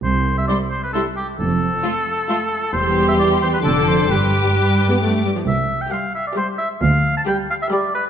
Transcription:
<<
  \new Staff \with { instrumentName = "Violin section" } { \time 3/4 \key c \major \tempo 4 = 133 r4 c'''4 c'''4 | r4 c'''4 c'''4 | c'''2 d'''4 | d'''2~ d'''8 r8 |
r4 c'''4 c'''4 | r4 b''4 b''4 | }
  \new Staff \with { instrumentName = "Oboe" } { \time 3/4 \key c \major c''8. e''16 d''8 c''16 b'16 a'8 g'8 | a'2. | c''8. e''16 d''8 c''16 b'16 a'8 c''8 | b'2 r4 |
e''8. g''16 f''8 e''16 d''16 c''8 e''8 | f''8. a''16 g''8 f''16 e''16 d''8 b'8 | }
  \new Staff \with { instrumentName = "Violin section" } { \time 3/4 \key c \major r4 e'4 e'4 | r4 f'4 f'4 | g'2 a'4 | g'2~ g'8 r8 |
r4 g'4 g'4 | r4 g'4 g'4 | }
  \new Staff \with { instrumentName = "Viola section" } { \clef bass \time 3/4 \key c \major r4 g4 g4 | r4 a4 a4 | g2 d4 | g4 g8. b16 a8 g16 f16 |
r4 g4 g4 | r4 g4 g4 | }
  \new Staff \with { instrumentName = "Cello section" } { \clef bass \time 3/4 \key c \major c,4 r2 | f,4 r2 | e,2 f,4 | g,2~ g,8 r8 |
c,4 r2 | d,4 r2 | }
  \new Staff \with { instrumentName = "Double bass section" } { \clef bass \time 3/4 \key c \major c,4 r2 | f,,4 r2 | e,,4 r4 f,,4 | g,,4 r2 |
c,4 r2 | d,4 r2 | }
>>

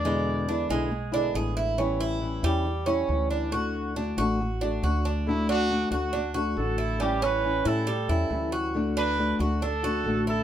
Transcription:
<<
  \new Staff \with { instrumentName = "Trumpet" } { \time 4/4 \key d \major \tempo 4 = 138 d''4. r2 r8 | r1 | r1 | e'8 fis'4 fis'4 r8 a'4 |
g'8 b'4 a'2 r8 | r8 b'4 r8 a'4. a'8 | }
  \new Staff \with { instrumentName = "Cuban tres" } { \time 4/4 \key d \major gis4 d'8 gis4 d'8 gis'8 e'8 | cis'8 e'4 g4 cis'4 d'8 | fis'4 d'8 fis'4 d'8 fis'8 d'8 | r8 d'4 fis'8 d'8 fis'4 e'8 |
g8 cis'4 e'8 g8 e'4 fis'8~ | fis'8 d'4 fis'8 d'8 fis'4 e'8 | }
  \new Staff \with { instrumentName = "Nylon-string guitar" } { \time 4/4 \key d \major <b, d gis b e'>4 <d gis b e'>8 <d gis b e'>8 r8 <d gis b e'>8 <d gis b e'>4 | <e g cis' e'>4 <e g cis' e'>8 <g cis' e'>8 r8 <g cis' e'>8 <e g cis' e'>4 | <d a d' fis'>4 <d a d' fis'>8 <a d' fis'>8 r8 <a d' fis'>8 <d a d' fis'>4 | <d a d' fis'>4 <d a d' fis'>8 <a d' fis'>8 r8 <a d' fis'>8 <d a d' fis'>4 |
<e g cis' e'>4 <e g cis' e'>8 <g cis' e'>8 r8 <g cis' e'>8 <e g cis' e'>4 | <d a d' fis'>4 <d a d' fis'>8 <a d' fis'>8 r8 <a d' fis'>8 <d a d' fis'>4 | }
  \new Staff \with { instrumentName = "Upright bass" } { \clef bass \time 4/4 \key d \major e,4. b,,4. a,,4~ | a,,4. e,4. d,4~ | d,4. a,,4. d,4~ | d,4. d,4. a,,4~ |
a,,4. a,4 e,8 d,4~ | d,4. d,4. a,,4 | }
>>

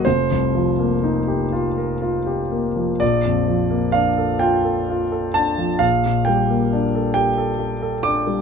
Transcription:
\new Staff \with { instrumentName = "Grand piano" } { \time 6/8 \key bes \major \tempo 4. = 42 << { c''4. r4. | d''4 f''8 g''4 a''8 | f''8 g''4 g''4 d'''8 | } \\ { f,,16 c,16 f16 bes16 ees'16 g'16 f'16 bes'16 f'16 g'16 bes16 f16 | bes,,16 f,16 f16 bes16 d'16 a'16 f'16 a'16 f'16 a'16 d'16 f16 | bes,,16 bes,16 g16 bes16 d'16 a'16 g'16 a'16 g'16 a'16 d'16 g16 | } >> }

